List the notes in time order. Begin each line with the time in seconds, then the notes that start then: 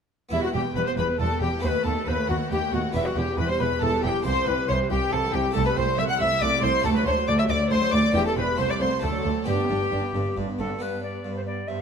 0.29 E1 E2 G3 B3 E4 E5
0.42 B3 F#4 F#5
0.54 E1 E2 G3 G4 G5
0.65 B3
0.75 E1 E2 G3 B4 B5
0.85 B3 C5 C6
0.97 E1 E2 G3 B4 B5
1.08 B3
1.19 E1 E2 G3 A4 A5
1.30 B3
1.41 E1 E2 G3 G4 G5
1.52 B3
1.59 A3 B3 F#4
1.63 D#2 B4 C5 B5
1.67 B4
1.74 A3
1.84 D#2 B3 A4 A5
1.96 A3
2.06 D#2 B3 B4 C5 B5
2.12 B4
2.17 A3
2.29 D#2 B3 F#4 F#5
2.39 A3
2.50 D#2 B3 G4 G5
2.61 A3
2.72 D#2 B3 F#4 F#5
2.82 A3
2.92 E1 E2 E3 B3 E4 G4 E5
3.04 G3 F#4 F#5
3.15 E1 E2 E3 G4 G5
3.27 G3
3.37 E1 E2 E3 B4 B5
3.47 G3 C5 C6
3.59 E1 E2 E3 B4 B5
3.70 G3
3.80 E1 E2 E3 A4 A5
3.92 G3
4.03 E1 E2 E3 G4 A4 G5
4.08 G4
4.14 G3
4.22 C2 E3 E4 G4 C5 C6
4.35 G3
4.46 C2 E3 B4 B5
4.57 G3
4.68 C2 E3 C5 C#5 C6
4.72 C5
4.79 G3
4.90 C2 E3 G4 G5
5.00 G3
5.11 C2 E3 A4 A5
5.22 G3
5.33 C2 E3 G4 G5
5.44 G3
5.51 A3 E4 G4 A4 A5
5.55 C2 A3 A4
5.65 G3 B4 B5
5.76 C2 A3 C5 C6
5.87 G3
5.97 C2 A3 E5 E6
6.08 G3 F#5 F#6
6.19 C2 A3 E5 E6
6.30 G3
6.41 C2 A3 D5 D6
6.52 G3
6.61 C2 A3 C5 C6
6.73 G3
6.80 D2 A3 D4 F#4 A4
6.84 D2 A3 A5
6.95 F#3 B4 B5
7.05 D2 A3 C5 C#5 C6
7.10 C5
7.16 F#3
7.27 D2 A3 D5 D6
7.38 F#3 E5 E6
7.49 D2 A3 D5 D6
7.60 F#3
7.70 D2 A3 C5 C6
7.82 F#3
7.92 D2 A3 D5 D6
8.04 F#3
8.12 E1 E2 E3 B3 E4 G4 G5
8.26 G3 A4 A5
8.37 E1 E2 E3 B4 C5 B5
8.48 G3
8.55 C2 A3 E4 C5 C6
8.69 G3 D5 D6
8.80 C2 A3 C5 C6
8.91 G3
8.99 D2 A3 D4 A4 A5
9.14 F#3
9.25 D2 A3
9.36 F#3
9.44 G1 G2 B3 D4 G4 G5
9.58 B3
9.69 G1 G2 D4
9.81 B3
9.92 G1 G2 D4
10.03 B3
10.14 G1 G2 D4
10.26 B3
10.36 G1 G2 D4
10.48 B3
10.59 G1 G2 D4 F#4 A4
10.70 B3
10.79 G2 G3 B3 D4 G4 B4
11.02 G3 B3 B4 D5
11.24 G2 G3 B3
11.34 A4 C5
11.46 G3 B3 B4 D5
11.67 G2 G3 B3 C5 E5